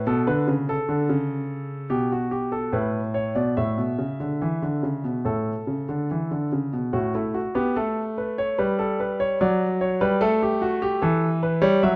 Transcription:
0.07 B2 A4
0.27 D3 B4
0.48 C#3
0.69 A4
0.89 D3
1.09 C#3
1.90 B2 G4
2.12 F#4
2.31 G4
2.52 A4
2.73 A2 B4
3.14 C#5
3.35 B2 D5
3.57 A2 E5
3.78 B2
3.98 C#3
4.20 D3
4.42 E3
4.62 D3
4.83 C#3
5.04 B2
5.25 A2 A4
5.67 C#3
5.89 D3
6.11 E3
6.31 D3
6.52 C#3
6.73 B2
6.93 A2 F#4
7.15 A3 E4
7.34 F#4
7.55 B3 G4
7.76 A3 A4
8.18 B4
8.38 C#5
8.58 G3 B4
8.79 A4
9.00 B4
9.20 C#5
9.41 F#3 D5
9.81 C#5
10.01 G3 B4
10.21 A3 A4
10.43 G4
10.62 F#4
10.82 G4
11.02 E3 A4
11.43 B4
11.62 G3 C#5
11.83 F#3 E5

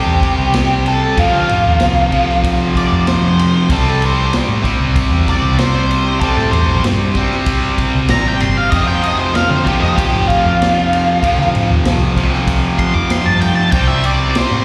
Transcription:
Already playing: C3 G3 C4 G4
0.06 E2
0.22 kick, ride
0.38 C2
0.54 snare, ride
0.86 A4, ride
1.17 F2 C3 F3 F4, kick, ride
1.33 D3
1.49 A2, ride
1.66 D#2
1.80 C2, snare, ride
2.12 F2 C3 F3, kick, ride
2.30 snare
2.44 kick, ride
2.75 D5, kick, ride
2.92 F2
3.07 C5, snare, ride
3.23 F3
3.39 ride
3.70 C2 C3 G3 C4 A4, kick, ride
4.02 C5, ride
4.33 snare, ride
4.48 A2
4.63 C3 G3 C4, kick, ride
4.80 C2
4.96 kick, ride
5.11 E2
5.27 D5, kick, ride
5.42 C2
5.58 C5, snare, ride
5.91 ride
6.21 C3 G3 A4, kick, ride
6.25 C4
6.37 A2, snare
6.51 E2 C5, ride
6.68 A#1
6.84 G2, snare, ride
7.15 G3 C4, kick, ride
7.19 C3
7.31 snare
7.46 kick, ride
7.78 kick, ride
7.95 C2
8.08 A1 A#5, snare, ride
8.28 G5
8.40 G1 C6, ride
8.57 F5
8.70 F2 C3 D#5, kick, ride
8.76 F3
8.87 G5, snare
9.03 D#5, ride
9.19 C5
9.34 F5, snare, ride
9.50 D3 C5
9.64 C3 F3 G4, kick, ride
9.69 F2
9.80 F2 D#5, snare
9.96 G4, kick, ride
10.13 A2
10.27 F4, kick, ride
10.45 F2
10.62 snare, ride
10.93 ride
11.22 F2 C3 F3, kick, ride
11.38 D3, snare
11.55 A2, ride
11.70 D#2
11.85 C2, snare, ride
12.17 F2 C3 F3, kick, ride
12.33 snare
12.47 kick, ride
12.78 C6, kick, ride
12.94 F2 D6
13.10 C6, snare, ride
13.26 G2 A5
13.41 G5, ride
13.55 A5
13.71 C2 C3 G3 G5, kick, ride
13.76 C4
13.87 E5
14.04 D5, ride
14.35 C5, snare, ride
14.51 A2

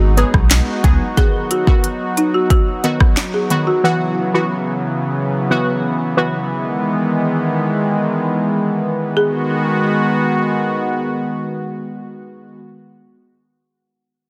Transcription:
Already playing: G#1 G#3 B3 D#4 F#4
0.17 F#3 B3 G#4, closed hi-hat
0.34 B1, kick, cross-stick
0.51 snare, clap, closed hi-hat
0.83 C#2 F#3 B3 G#4, kick, closed hi-hat
1.17 D#3 F#3 B3 F#4 G#4, kick, closed hi-hat
1.51 F#4, closed hi-hat
1.67 D#3 B3 F#4, kick
1.84 closed hi-hat
2.17 D#4, closed hi-hat
2.34 F#4
2.50 F#4, kick, closed hi-hat
2.84 D#3 B3 F#4, closed hi-hat
3.00 kick, cross-stick
3.17 snare, clap, closed hi-hat
3.34 G#4
3.50 D#3 B3 F#4, closed hi-hat
3.67 F#4
3.84 C#3 E3 B3 F#4
4.34 E3 B3 F#4
5.50 E3 B3 F#4
6.17 E3 B3 F#4
6.50 D#3 G#3
9.17 D#3 G#3 B3 F#4 G#4

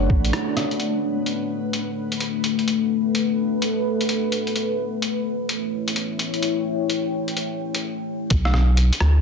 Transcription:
Already playing: A3 B3 D4 B4 C#5 F#5
0.10 A1, kick
0.25 closed hi-hat
0.33 cross-stick, closed hi-hat
0.57 cross-stick, closed hi-hat
0.71 closed hi-hat
0.80 closed hi-hat
1.26 closed hi-hat
1.71 B4, closed hi-hat
2.12 closed hi-hat
2.20 closed hi-hat
2.44 closed hi-hat
2.59 closed hi-hat
2.68 closed hi-hat
3.15 closed hi-hat
3.62 closed hi-hat
4.01 closed hi-hat
4.09 closed hi-hat
4.32 closed hi-hat
4.47 closed hi-hat
4.56 closed hi-hat
5.02 E4 C#5, closed hi-hat
5.49 closed hi-hat
5.88 closed hi-hat
5.96 closed hi-hat
6.15 G5, closed hi-hat
6.34 closed hi-hat
6.42 closed hi-hat
6.90 closed hi-hat
7.28 closed hi-hat
7.37 closed hi-hat
7.74 closed hi-hat
8.30 B1, kick, closed hi-hat
8.45 B4, cross-stick
8.53 D4, cross-stick
8.77 closed hi-hat
8.93 closed hi-hat
9.00 D2, cross-stick

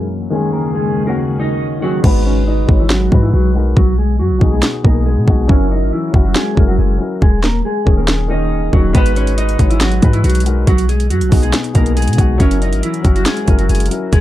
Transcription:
Already playing: F#2 E3 F#3 A#3 C#4 E4 A#4
0.30 D#2 C#3 D#3 G#3 A#3 C#4 G#4
0.34 G#4
0.53 A#3 A#4
0.75 G#3 G#4
1.05 D#3 A#3 C#4 A#4
1.10 F#4
1.40 D#4 D#5
1.80 D#3 F#3 A#3 C#4 F#4
1.84 G#4
2.02 G#1 G#3 B3 D#4 F#4 B4, kick, crash
2.07 B4
2.26 C#4 C#5
2.47 D#4 D#5
2.67 G#1 G#3 D#4 F#4, kick
2.71 C#5
2.80 E3 E4
2.90 F#3 F#4, snare
3.10 G#2 G#3 D#4 F#4, kick
3.14 B4
3.23 E3 E4
3.33 B1 F#3 F#4
3.53 G#3 D#4 F#4
3.57 A#4
3.76 B1 F#3 F#4, kick
3.98 G#3 G#4
4.19 F#2 F#3 F#4
4.31 B1
4.38 B1 B2 B3 D#4, kick
4.43 G#4
4.52 G#3 G#4
4.63 snare
4.83 B1 B2 A#3 B3 D#4 A#4, kick
4.87 G#4
5.06 G#3 G#4
5.17 B2
5.26 B1 B2 B3 D#4, kick
5.30 F#4
5.47 F#1 F#3 C#4 E4 C#5, kick
5.51 A#4
5.71 D#4 D#5
5.82 G#1
5.92 E3 E4
6.11 F#1 F#3 C#4 E4, kick
6.15 F#4
6.25 F#3 F#4
6.35 G#3 G#4, snare
6.55 F#1 F#3 C#4 E4, kick
6.59 A#4
6.68 F#3 F#4
6.79 F#1 G#3 G#4
6.98 F#3 C#4 E4
7.02 A#4
7.22 D#1 G#3 G#4, kick
7.43 A#3 A#4, snare
7.65 G#3 G#4
7.85 D#1 D#3 A#3 C#4, kick
7.89 G#4
7.97 A#3 A#4
8.08 snare
8.28 D#3 A#3 C#4 D#4 D#5
8.32 G#4
8.71 D#1 D#3 F#3 A#3 C#4 F#4, kick
8.76 D#4
8.93 G#1 G#3 B3 D#4 F#4 B4, kick, closed hi-hat
8.97 B4
9.06 closed hi-hat
9.16 C#4 C#5, closed hi-hat
9.27 closed hi-hat
9.38 D#4 D#5, closed hi-hat
9.49 closed hi-hat
9.57 G#1 G#3 D#4 F#4, kick, closed hi-hat
9.62 C#5
9.70 E3 E4, closed hi-hat
9.81 F#3 F#4, snare, closed hi-hat
9.92 closed hi-hat
10.00 G#2 G#3 D#4 F#4, kick, closed hi-hat
10.05 B4
10.13 E3 E4, closed hi-hat
10.24 B1 F#3 F#4, closed hi-hat
10.30 closed hi-hat
10.35 closed hi-hat
10.40 G#3, closed hi-hat
10.45 D#4 F#4 A#4, closed hi-hat
10.67 B1 F#3 F#4, kick, closed hi-hat
10.78 closed hi-hat
10.89 G#3 G#4, closed hi-hat
11.00 closed hi-hat
11.10 F#2 F#3 F#4, closed hi-hat
11.21 B1, closed hi-hat
11.29 B1 B2 B3 D#4, kick, open hi-hat
11.33 G#4
11.43 G#3 G#4, closed hi-hat
11.53 snare, closed hi-hat
11.64 closed hi-hat
11.73 B1 B2 A#3 B3 D#4 A#4, kick, closed hi-hat
11.78 G#4
11.86 closed hi-hat
11.97 G#3 G#4, closed hi-hat
12.02 closed hi-hat
12.08 B2, closed hi-hat
12.13 B2, closed hi-hat
12.17 B1 B3 D#4 F#4, kick, closed hi-hat
12.38 F#1 F#3 C#4 E4 C#5, kick, closed hi-hat
12.42 A#4
12.51 closed hi-hat
12.61 D#4 D#5, closed hi-hat
12.72 G#1, closed hi-hat
12.83 E3 E4, closed hi-hat
12.94 closed hi-hat
13.02 F#1 F#3 C#4 E4, kick, closed hi-hat
13.06 F#4
13.15 F#3 F#4, closed hi-hat
13.26 G#3 G#4, snare, closed hi-hat
13.37 closed hi-hat
13.46 F#1 F#3 C#4 E4, kick, closed hi-hat
13.50 A#4
13.59 F#3 F#4, closed hi-hat
13.69 F#1 G#3 G#4, closed hi-hat
13.75 closed hi-hat
13.80 closed hi-hat
13.86 F#3 C#4, closed hi-hat
13.91 E4 A#4, closed hi-hat
14.13 D#1 G#3 G#4, kick, closed hi-hat

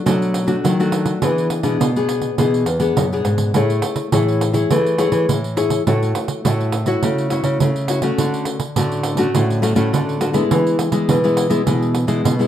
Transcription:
0.06 B2 F#3 A3 D4 F#4, pandeiro
0.22 pandeiro
0.34 pandeiro
0.47 A3 D4 F#4, pandeiro
0.64 D#3 F#3, pandeiro
0.80 A3 D4 F#4, pandeiro
0.92 pandeiro
1.06 pandeiro
1.22 E3 B3 D4 G#4, pandeiro
1.38 pandeiro
1.50 pandeiro
1.63 B2 B3 D4 G#4, pandeiro
1.80 B2, pandeiro
1.96 B3 D4 G#4, pandeiro
2.09 pandeiro
2.22 pandeiro
2.38 B2 E3 B3 D4 G#4, pandeiro
2.54 pandeiro
2.66 E2, pandeiro
2.80 B3 D4 G#4, pandeiro
2.96 F#2 B2, pandeiro
3.12 B3 D4 G#4, pandeiro
3.24 G#2, pandeiro
3.38 pandeiro
3.54 A2 A3 E4 G#4 C#5, pandeiro
3.70 pandeiro
3.82 pandeiro
3.96 pandeiro
4.12 A2 E3 E4 G#4 C#5, pandeiro
4.28 pandeiro
4.41 pandeiro
4.53 E4 G#4 C#5, pandeiro
4.71 E3 A3, pandeiro
4.86 pandeiro
4.98 E4 G#4 C#5, pandeiro
5.12 E3, pandeiro
5.29 A2 E3, pandeiro
5.44 pandeiro
5.57 E4 G#4 C#5, pandeiro
5.70 pandeiro
5.87 A2 A3 E4 F#4 C#5, pandeiro
6.03 pandeiro
6.15 pandeiro
6.28 pandeiro
6.45 A2 A3 E4 F#4 C#5, pandeiro
6.60 pandeiro
6.72 pandeiro
6.86 E4 F#4 C#5, pandeiro
7.03 C#3 A3, pandeiro
7.18 pandeiro
7.30 E4 F#4 C#5, pandeiro
7.44 C#3, pandeiro
7.60 C#3 A3, pandeiro
7.76 pandeiro
7.88 E4 F#4 C#5, pandeiro
8.02 A3 C#4 F#4, pandeiro
8.18 D3, pandeiro
8.34 pandeiro
8.45 pandeiro
8.60 pandeiro
8.76 A2 D3 A3 C#4 F#4, pandeiro
8.92 pandeiro
9.03 pandeiro
9.17 A3 C#4 F#4, pandeiro
9.35 A2 D3, pandeiro
9.50 pandeiro
9.62 A3 C#4 F#4, pandeiro
9.75 A2 A3 C#4 F#4, pandeiro
9.92 A2 D3, pandeiro
10.09 pandeiro
10.21 A3 C#4 F#4, pandeiro
10.33 G#3 B3 E4, pandeiro
10.51 E3, pandeiro
10.67 pandeiro
10.79 pandeiro
10.92 G#3 B3 E4, pandeiro
11.09 B2 E3, pandeiro
11.24 G#3 B3 E4, pandeiro
11.37 pandeiro
11.50 G#3 B3 E4, pandeiro
11.66 B2 E3 G#3 B3 E4, pandeiro
11.82 pandeiro
11.95 pandeiro
12.07 B2 G#3 B3 E4, pandeiro
12.24 B2, pandeiro
12.39 G#3 B3 E4, pandeiro

